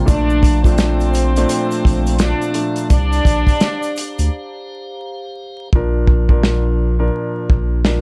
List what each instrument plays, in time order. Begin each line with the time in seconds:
Already playing: tonewheel organ F5
0.05 sub bass A#1, grand piano A#2 F3 A3 D4, tonewheel organ A3 D5 A#5, violin section D4 D5, kick, closed hi-hat, shaker
0.30 shaker
0.43 kick, closed hi-hat, shaker
0.64 grand piano A#2 F3 A3 D4, violin section C4 C5, kick, closed hi-hat, shaker
0.78 snare, closed hi-hat, shaker
1.00 closed hi-hat, shaker
1.14 closed hi-hat, shaker
1.36 grand piano A#2 F3 A3 D4, closed hi-hat, shaker
1.49 closed hi-hat, shaker
1.71 closed hi-hat, shaker
1.85 sub bass A#1, kick, closed hi-hat
2.06 closed hi-hat, shaker
2.18 grand piano A#2 F3 A3 D4, violin section D4 D5, snare, closed hi-hat, shaker
2.41 closed hi-hat, shaker
2.54 grand piano A#2 F3 A3 D4, closed hi-hat
2.76 closed hi-hat, shaker
2.89 sub bass C2, violin section D4 D5, tonewheel organ G4 C5, kick, closed hi-hat, shaker
3.12 closed hi-hat, shaker
3.25 sub bass A#1, kick, closed hi-hat, shaker
3.47 kick, closed hi-hat, shaker
3.60 snare, closed hi-hat, shaker
3.83 closed hi-hat, shaker
3.96 closed hi-hat, shaker
4.19 sub bass D2, closed hi-hat, shaker
5.73 sub bass A#1, grand piano A#2 F3 D4 A#4, kick
6.07 kick
6.29 grand piano A#2 F3 D4 A#4, kick
6.43 snare
6.99 grand piano A#2 F3 D4 A#4
7.50 sub bass A#1, kick
7.85 grand piano A#2 F3 D4 A#4, snare